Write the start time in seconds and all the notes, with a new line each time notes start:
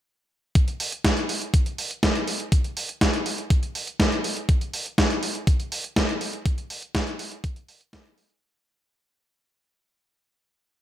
0.55 kick, closed hi-hat
0.68 closed hi-hat
0.80 open hi-hat
0.92 closed hi-hat
1.05 kick, snare, closed hi-hat
1.17 closed hi-hat
1.29 open hi-hat
1.42 closed hi-hat
1.54 kick, closed hi-hat
1.66 closed hi-hat
1.78 open hi-hat
1.91 closed hi-hat
2.03 kick, snare, closed hi-hat
2.15 closed hi-hat
2.28 open hi-hat
2.40 closed hi-hat
2.52 kick, closed hi-hat
2.64 closed hi-hat
2.77 open hi-hat
2.89 closed hi-hat
3.01 kick, snare, closed hi-hat
3.14 closed hi-hat
3.26 open hi-hat
3.38 closed hi-hat
3.50 kick, closed hi-hat
3.63 closed hi-hat
3.75 open hi-hat
3.87 closed hi-hat
4.00 kick, snare, closed hi-hat
4.12 closed hi-hat
4.24 open hi-hat
4.37 closed hi-hat
4.49 kick, closed hi-hat
4.61 closed hi-hat
4.73 open hi-hat
4.86 closed hi-hat
4.98 kick, snare, closed hi-hat
5.10 closed hi-hat
5.23 open hi-hat
5.35 closed hi-hat
5.47 kick, closed hi-hat
5.60 closed hi-hat
5.72 open hi-hat
5.84 closed hi-hat
5.96 kick, snare, closed hi-hat
6.09 closed hi-hat
6.21 open hi-hat
6.33 closed hi-hat
6.46 kick, closed hi-hat
6.58 closed hi-hat
6.70 open hi-hat
6.82 closed hi-hat
6.95 kick, snare, closed hi-hat
7.07 closed hi-hat
7.19 open hi-hat
7.32 closed hi-hat
7.44 kick, closed hi-hat
7.56 closed hi-hat
7.68 open hi-hat
7.81 closed hi-hat
7.93 kick, snare, closed hi-hat
8.05 closed hi-hat
8.18 open hi-hat
8.30 closed hi-hat